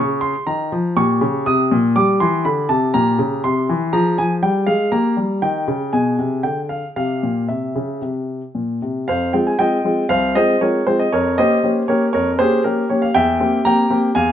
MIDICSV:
0, 0, Header, 1, 2, 480
1, 0, Start_track
1, 0, Key_signature, -4, "minor"
1, 0, Tempo, 496689
1, 935, Time_signature, 4, 2, 24, 8
1, 5726, Tempo, 524017
1, 9086, Tempo, 506329
1, 13567, End_track
2, 0, Start_track
2, 0, Title_t, "Grand piano"
2, 0, Program_c, 0, 0
2, 0, Note_on_c, 0, 49, 68
2, 0, Note_on_c, 0, 65, 45
2, 0, Note_on_c, 0, 85, 93
2, 181, Note_off_c, 0, 85, 0
2, 203, Note_on_c, 0, 84, 88
2, 314, Note_off_c, 0, 49, 0
2, 449, Note_off_c, 0, 84, 0
2, 450, Note_on_c, 0, 82, 81
2, 454, Note_on_c, 0, 51, 55
2, 683, Note_off_c, 0, 51, 0
2, 697, Note_on_c, 0, 53, 60
2, 895, Note_off_c, 0, 82, 0
2, 896, Note_off_c, 0, 65, 0
2, 925, Note_off_c, 0, 53, 0
2, 933, Note_on_c, 0, 46, 68
2, 933, Note_on_c, 0, 85, 97
2, 938, Note_on_c, 0, 67, 46
2, 1162, Note_off_c, 0, 46, 0
2, 1171, Note_on_c, 0, 49, 64
2, 1401, Note_off_c, 0, 49, 0
2, 1413, Note_on_c, 0, 87, 89
2, 1415, Note_off_c, 0, 85, 0
2, 1417, Note_on_c, 0, 48, 67
2, 1646, Note_off_c, 0, 48, 0
2, 1657, Note_on_c, 0, 46, 69
2, 1703, Note_off_c, 0, 87, 0
2, 1860, Note_off_c, 0, 67, 0
2, 1886, Note_off_c, 0, 46, 0
2, 1891, Note_on_c, 0, 67, 41
2, 1892, Note_on_c, 0, 86, 86
2, 1895, Note_on_c, 0, 55, 64
2, 2108, Note_off_c, 0, 86, 0
2, 2122, Note_off_c, 0, 55, 0
2, 2129, Note_on_c, 0, 84, 87
2, 2138, Note_on_c, 0, 52, 69
2, 2344, Note_off_c, 0, 84, 0
2, 2361, Note_off_c, 0, 52, 0
2, 2366, Note_on_c, 0, 83, 73
2, 2369, Note_on_c, 0, 50, 59
2, 2594, Note_off_c, 0, 50, 0
2, 2600, Note_on_c, 0, 81, 71
2, 2602, Note_on_c, 0, 48, 60
2, 2604, Note_off_c, 0, 83, 0
2, 2802, Note_off_c, 0, 67, 0
2, 2816, Note_off_c, 0, 81, 0
2, 2830, Note_off_c, 0, 48, 0
2, 2840, Note_on_c, 0, 82, 94
2, 2844, Note_on_c, 0, 67, 41
2, 2845, Note_on_c, 0, 46, 65
2, 3072, Note_off_c, 0, 46, 0
2, 3080, Note_on_c, 0, 49, 59
2, 3281, Note_off_c, 0, 82, 0
2, 3308, Note_off_c, 0, 49, 0
2, 3324, Note_on_c, 0, 84, 79
2, 3326, Note_on_c, 0, 48, 59
2, 3551, Note_off_c, 0, 48, 0
2, 3570, Note_on_c, 0, 52, 64
2, 3762, Note_off_c, 0, 67, 0
2, 3794, Note_off_c, 0, 52, 0
2, 3797, Note_on_c, 0, 82, 93
2, 3798, Note_on_c, 0, 68, 41
2, 3799, Note_on_c, 0, 53, 71
2, 3802, Note_off_c, 0, 84, 0
2, 4027, Note_off_c, 0, 53, 0
2, 4038, Note_off_c, 0, 82, 0
2, 4041, Note_on_c, 0, 80, 80
2, 4044, Note_on_c, 0, 53, 59
2, 4184, Note_off_c, 0, 80, 0
2, 4268, Note_off_c, 0, 53, 0
2, 4277, Note_on_c, 0, 55, 53
2, 4278, Note_on_c, 0, 79, 71
2, 4504, Note_off_c, 0, 55, 0
2, 4509, Note_on_c, 0, 77, 79
2, 4514, Note_on_c, 0, 56, 51
2, 4516, Note_off_c, 0, 79, 0
2, 4716, Note_off_c, 0, 68, 0
2, 4727, Note_off_c, 0, 77, 0
2, 4743, Note_off_c, 0, 56, 0
2, 4752, Note_on_c, 0, 67, 34
2, 4752, Note_on_c, 0, 82, 81
2, 4753, Note_on_c, 0, 58, 63
2, 4983, Note_off_c, 0, 58, 0
2, 4995, Note_on_c, 0, 55, 54
2, 5226, Note_off_c, 0, 55, 0
2, 5237, Note_off_c, 0, 82, 0
2, 5239, Note_on_c, 0, 79, 72
2, 5243, Note_on_c, 0, 51, 58
2, 5471, Note_off_c, 0, 51, 0
2, 5487, Note_on_c, 0, 49, 57
2, 5685, Note_off_c, 0, 67, 0
2, 5716, Note_off_c, 0, 49, 0
2, 5726, Note_off_c, 0, 79, 0
2, 5729, Note_on_c, 0, 80, 64
2, 5733, Note_on_c, 0, 47, 57
2, 5733, Note_on_c, 0, 68, 35
2, 5953, Note_off_c, 0, 47, 0
2, 5967, Note_on_c, 0, 48, 55
2, 6189, Note_off_c, 0, 48, 0
2, 6192, Note_on_c, 0, 79, 60
2, 6195, Note_on_c, 0, 50, 41
2, 6199, Note_off_c, 0, 80, 0
2, 6335, Note_off_c, 0, 79, 0
2, 6429, Note_on_c, 0, 77, 60
2, 6539, Note_off_c, 0, 50, 0
2, 6575, Note_off_c, 0, 77, 0
2, 6641, Note_off_c, 0, 68, 0
2, 6677, Note_on_c, 0, 77, 70
2, 6678, Note_on_c, 0, 48, 51
2, 6678, Note_on_c, 0, 67, 31
2, 6906, Note_off_c, 0, 48, 0
2, 6923, Note_on_c, 0, 46, 44
2, 7122, Note_off_c, 0, 77, 0
2, 7149, Note_off_c, 0, 46, 0
2, 7155, Note_on_c, 0, 76, 46
2, 7161, Note_on_c, 0, 48, 43
2, 7390, Note_off_c, 0, 48, 0
2, 7401, Note_on_c, 0, 49, 47
2, 7632, Note_off_c, 0, 49, 0
2, 7643, Note_on_c, 0, 48, 42
2, 7739, Note_off_c, 0, 76, 0
2, 7993, Note_off_c, 0, 48, 0
2, 8129, Note_on_c, 0, 46, 37
2, 8361, Note_off_c, 0, 46, 0
2, 8379, Note_on_c, 0, 48, 42
2, 8580, Note_off_c, 0, 67, 0
2, 8606, Note_off_c, 0, 48, 0
2, 8614, Note_on_c, 0, 77, 78
2, 8618, Note_on_c, 0, 41, 50
2, 8626, Note_on_c, 0, 72, 61
2, 8841, Note_off_c, 0, 72, 0
2, 8846, Note_off_c, 0, 41, 0
2, 8847, Note_on_c, 0, 79, 64
2, 8851, Note_off_c, 0, 77, 0
2, 8852, Note_on_c, 0, 56, 45
2, 8852, Note_on_c, 0, 60, 44
2, 8858, Note_on_c, 0, 65, 46
2, 8967, Note_off_c, 0, 79, 0
2, 8971, Note_on_c, 0, 80, 57
2, 9021, Note_off_c, 0, 56, 0
2, 9021, Note_off_c, 0, 60, 0
2, 9024, Note_off_c, 0, 65, 0
2, 9080, Note_on_c, 0, 79, 82
2, 9081, Note_on_c, 0, 56, 45
2, 9087, Note_off_c, 0, 80, 0
2, 9089, Note_on_c, 0, 60, 44
2, 9091, Note_on_c, 0, 65, 46
2, 9093, Note_on_c, 0, 75, 59
2, 9255, Note_off_c, 0, 56, 0
2, 9260, Note_off_c, 0, 60, 0
2, 9261, Note_off_c, 0, 65, 0
2, 9326, Note_on_c, 0, 56, 45
2, 9331, Note_on_c, 0, 60, 41
2, 9336, Note_on_c, 0, 65, 43
2, 9496, Note_off_c, 0, 56, 0
2, 9500, Note_off_c, 0, 60, 0
2, 9503, Note_off_c, 0, 65, 0
2, 9533, Note_off_c, 0, 75, 0
2, 9559, Note_off_c, 0, 79, 0
2, 9559, Note_on_c, 0, 77, 87
2, 9563, Note_on_c, 0, 36, 58
2, 9569, Note_on_c, 0, 72, 56
2, 9789, Note_off_c, 0, 72, 0
2, 9796, Note_off_c, 0, 36, 0
2, 9801, Note_off_c, 0, 77, 0
2, 9807, Note_on_c, 0, 75, 80
2, 9810, Note_on_c, 0, 56, 47
2, 9813, Note_on_c, 0, 60, 48
2, 9818, Note_on_c, 0, 72, 62
2, 9820, Note_on_c, 0, 65, 47
2, 9983, Note_off_c, 0, 56, 0
2, 9985, Note_off_c, 0, 60, 0
2, 9989, Note_off_c, 0, 65, 0
2, 10024, Note_off_c, 0, 75, 0
2, 10037, Note_off_c, 0, 72, 0
2, 10052, Note_on_c, 0, 73, 70
2, 10055, Note_on_c, 0, 56, 37
2, 10059, Note_on_c, 0, 60, 40
2, 10062, Note_on_c, 0, 70, 49
2, 10064, Note_on_c, 0, 65, 43
2, 10228, Note_off_c, 0, 56, 0
2, 10230, Note_off_c, 0, 60, 0
2, 10234, Note_off_c, 0, 65, 0
2, 10270, Note_off_c, 0, 73, 0
2, 10282, Note_off_c, 0, 70, 0
2, 10293, Note_on_c, 0, 72, 70
2, 10298, Note_on_c, 0, 56, 44
2, 10300, Note_on_c, 0, 60, 39
2, 10305, Note_on_c, 0, 65, 42
2, 10414, Note_off_c, 0, 72, 0
2, 10415, Note_on_c, 0, 75, 65
2, 10470, Note_off_c, 0, 56, 0
2, 10471, Note_off_c, 0, 60, 0
2, 10475, Note_off_c, 0, 65, 0
2, 10535, Note_off_c, 0, 75, 0
2, 10538, Note_on_c, 0, 73, 78
2, 10544, Note_on_c, 0, 41, 58
2, 10549, Note_on_c, 0, 70, 60
2, 10766, Note_off_c, 0, 70, 0
2, 10772, Note_off_c, 0, 41, 0
2, 10776, Note_off_c, 0, 73, 0
2, 10779, Note_on_c, 0, 75, 83
2, 10785, Note_on_c, 0, 58, 46
2, 10786, Note_on_c, 0, 61, 46
2, 10790, Note_on_c, 0, 72, 62
2, 10793, Note_on_c, 0, 67, 50
2, 10954, Note_off_c, 0, 58, 0
2, 10954, Note_off_c, 0, 61, 0
2, 10959, Note_off_c, 0, 67, 0
2, 11020, Note_on_c, 0, 58, 45
2, 11021, Note_on_c, 0, 61, 46
2, 11028, Note_on_c, 0, 67, 49
2, 11066, Note_off_c, 0, 75, 0
2, 11192, Note_off_c, 0, 58, 0
2, 11192, Note_off_c, 0, 61, 0
2, 11197, Note_off_c, 0, 67, 0
2, 11230, Note_off_c, 0, 72, 0
2, 11254, Note_on_c, 0, 73, 71
2, 11260, Note_on_c, 0, 58, 45
2, 11263, Note_on_c, 0, 61, 44
2, 11268, Note_on_c, 0, 70, 60
2, 11269, Note_on_c, 0, 67, 49
2, 11400, Note_off_c, 0, 73, 0
2, 11433, Note_off_c, 0, 58, 0
2, 11434, Note_off_c, 0, 61, 0
2, 11438, Note_off_c, 0, 67, 0
2, 11487, Note_off_c, 0, 70, 0
2, 11490, Note_on_c, 0, 73, 77
2, 11499, Note_on_c, 0, 41, 49
2, 11503, Note_on_c, 0, 70, 66
2, 11637, Note_off_c, 0, 73, 0
2, 11725, Note_off_c, 0, 70, 0
2, 11732, Note_off_c, 0, 41, 0
2, 11735, Note_on_c, 0, 72, 84
2, 11740, Note_on_c, 0, 58, 45
2, 11744, Note_on_c, 0, 61, 51
2, 11745, Note_on_c, 0, 67, 59
2, 11748, Note_on_c, 0, 68, 57
2, 11913, Note_off_c, 0, 58, 0
2, 11915, Note_off_c, 0, 61, 0
2, 11915, Note_off_c, 0, 67, 0
2, 11953, Note_off_c, 0, 72, 0
2, 11967, Note_off_c, 0, 68, 0
2, 11976, Note_on_c, 0, 70, 63
2, 11982, Note_on_c, 0, 58, 43
2, 11982, Note_on_c, 0, 61, 43
2, 11988, Note_on_c, 0, 67, 46
2, 12154, Note_off_c, 0, 58, 0
2, 12154, Note_off_c, 0, 61, 0
2, 12194, Note_off_c, 0, 70, 0
2, 12207, Note_off_c, 0, 67, 0
2, 12216, Note_on_c, 0, 73, 62
2, 12222, Note_on_c, 0, 58, 47
2, 12225, Note_on_c, 0, 61, 39
2, 12230, Note_on_c, 0, 67, 44
2, 12334, Note_on_c, 0, 77, 68
2, 12338, Note_off_c, 0, 73, 0
2, 12394, Note_off_c, 0, 58, 0
2, 12396, Note_off_c, 0, 61, 0
2, 12399, Note_off_c, 0, 67, 0
2, 12453, Note_on_c, 0, 79, 91
2, 12457, Note_off_c, 0, 77, 0
2, 12458, Note_on_c, 0, 40, 61
2, 12465, Note_on_c, 0, 76, 70
2, 12691, Note_off_c, 0, 40, 0
2, 12695, Note_on_c, 0, 58, 46
2, 12695, Note_on_c, 0, 60, 45
2, 12700, Note_on_c, 0, 67, 52
2, 12869, Note_off_c, 0, 58, 0
2, 12869, Note_off_c, 0, 60, 0
2, 12872, Note_off_c, 0, 67, 0
2, 12907, Note_off_c, 0, 76, 0
2, 12932, Note_on_c, 0, 82, 98
2, 12933, Note_off_c, 0, 79, 0
2, 12935, Note_on_c, 0, 58, 50
2, 12943, Note_on_c, 0, 60, 42
2, 12945, Note_on_c, 0, 67, 52
2, 12947, Note_on_c, 0, 79, 70
2, 13108, Note_off_c, 0, 58, 0
2, 13112, Note_off_c, 0, 60, 0
2, 13114, Note_off_c, 0, 67, 0
2, 13171, Note_on_c, 0, 58, 49
2, 13172, Note_on_c, 0, 60, 49
2, 13174, Note_on_c, 0, 67, 52
2, 13217, Note_off_c, 0, 82, 0
2, 13342, Note_off_c, 0, 58, 0
2, 13343, Note_off_c, 0, 60, 0
2, 13344, Note_off_c, 0, 67, 0
2, 13383, Note_off_c, 0, 79, 0
2, 13405, Note_on_c, 0, 80, 94
2, 13409, Note_on_c, 0, 40, 63
2, 13415, Note_on_c, 0, 77, 69
2, 13567, Note_off_c, 0, 40, 0
2, 13567, Note_off_c, 0, 77, 0
2, 13567, Note_off_c, 0, 80, 0
2, 13567, End_track
0, 0, End_of_file